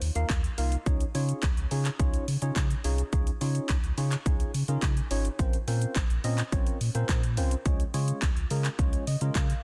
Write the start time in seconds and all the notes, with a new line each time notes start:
0.01 D#2, open hi-hat, shaker
0.15 D#2 A#3 D#4 F4 A#4 F5, closed hi-hat, shaker
0.30 D#2, kick, clap, closed hi-hat, shaker
0.44 closed hi-hat, shaker
0.58 C2 A#3 D#4 F4 A#4 F5, open hi-hat, shaker
0.72 closed hi-hat, shaker
0.86 C#2 C#4 D#4 F4 G#4 C#5, kick, closed hi-hat, shaker
1.00 closed hi-hat, shaker
1.14 C#3 C#4 D#4 F4 G#4 C#5, open hi-hat, shaker
1.29 closed hi-hat, shaker
1.43 C#2, kick, clap, closed hi-hat, shaker
1.57 C#2, closed hi-hat, shaker
1.71 C#3 C#4 D#4 F4 G#4 C#5, open hi-hat, shaker
1.85 clap, closed hi-hat, shaker
1.99 C#2 C#4 D#4 F4 G#4 C#5, kick, closed hi-hat, shaker
2.14 closed hi-hat, shaker
2.28 C#3, open hi-hat, shaker
2.42 C#3 C#4 D#4 F4 G#4 C#5, closed hi-hat, shaker
2.56 C#3, kick, clap, closed hi-hat, shaker
2.70 closed hi-hat, shaker
2.84 C2 C#4 D#4 F4 G#4 C#5, open hi-hat, shaker
2.98 closed hi-hat, shaker
3.13 C#2 C#4 D#4 F4 G#4 C#5, kick, closed hi-hat, shaker
3.27 closed hi-hat, shaker
3.41 C#3 C#4 D#4 F4 G#4 C#5, open hi-hat, shaker
3.55 closed hi-hat, shaker
3.69 C#2, kick, clap, closed hi-hat, shaker
3.83 C#2, closed hi-hat, shaker
3.97 C#3 C#4 D#4 F4 G#4 C#5, open hi-hat, shaker
4.12 clap, closed hi-hat, shaker
4.26 C#2 C#4 D#4 F4 G#4 C#5, kick, closed hi-hat, shaker
4.40 closed hi-hat, shaker
4.54 C#3, open hi-hat, shaker
4.68 C#3 C#4 D#4 F4 G#4 A#4, closed hi-hat, shaker
4.82 C#3, kick, clap, closed hi-hat, shaker
4.97 closed hi-hat, shaker
5.11 G#1 C#4 D#4 F4 G#4 C#5, open hi-hat, shaker
5.25 closed hi-hat, shaker
5.39 A#1 C4 C#4 F4 A#4 C5, kick, closed hi-hat, shaker
5.53 closed hi-hat, shaker
5.67 A#2 C4 C#4 F4 A#4 C5, open hi-hat, shaker
5.81 closed hi-hat, shaker
5.96 A#1, kick, clap, closed hi-hat, shaker
6.10 A#1, closed hi-hat, shaker
6.24 A#2 C4 C#4 F4 A#4 D#5, open hi-hat, shaker
6.38 clap, closed hi-hat, shaker
6.52 A#1 C4 C#4 F4 A#4 C#5, kick, closed hi-hat, shaker
6.67 closed hi-hat, shaker
6.81 A#2, open hi-hat, shaker
6.95 A#2 C4 C#4 F4 A#4 C5, closed hi-hat, shaker
7.09 A#2, kick, clap, closed hi-hat, shaker
7.23 closed hi-hat, shaker
7.37 C2 C4 C#4 F4 A#4 C5, open hi-hat, shaker
7.51 closed hi-hat, shaker
7.65 C#2 G#3 C#4 F4 G#4 C#5, kick, closed hi-hat, shaker
7.80 closed hi-hat, shaker
7.94 C#3 G#3 C#4 F4 G#4 C#5, open hi-hat, shaker
8.08 closed hi-hat, shaker
8.22 C#2, kick, clap, closed hi-hat, shaker
8.36 C#2, closed hi-hat, shaker
8.50 C#3 G#3 C#4 F4 G#4 A#4, open hi-hat, shaker
8.64 clap, closed hi-hat, shaker
8.79 C#2 G#3 C#4 F4 G#4 C#5, kick, closed hi-hat, shaker
8.93 closed hi-hat, shaker
9.07 C#3 D#5, open hi-hat, shaker
9.21 C#3 G#3 C#4 F4 G#4 A#4, closed hi-hat, shaker
9.35 C#3 F5, kick, clap, closed hi-hat, shaker
9.50 closed hi-hat, shaker